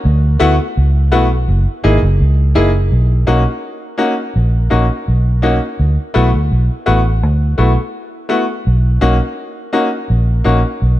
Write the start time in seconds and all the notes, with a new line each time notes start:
0.05 D2
0.39 D2 A3 B3 E4 F#4
0.77 C#2
1.12 B1 A3 B3 E4 F#4
1.48 F#1
1.84 G#1 A#3 D#4 E4 G#4
2.03 F#1
2.21 C#2
2.55 F#1 A#3 D#4 E4 G#4
2.92 B1
3.27 B1 A#3 C#4 D#4 F#4
3.98 A#3 C#4 D#4 F#4
4.36 A#1
4.70 A#1 A#3 C#4 D#4 F#4
5.08 B1
5.42 A#3 C#4 D#4 F#4
5.79 D2
6.14 B1 A3 B3 E4 F#4
6.34 D2
6.51 B1
6.86 A1 A3 B3 E4 F#4
7.23 D2
7.58 B1 A3 B3 E4 F#4
8.29 A3 B3 E4 F#4
8.67 B1
9.01 B1 A#3 C#4 D#4 F#4
9.73 A#3 C#4 D#4 F#4
10.10 A#1
10.44 A#1 A#3 C#4 D#4 F#4
10.82 B1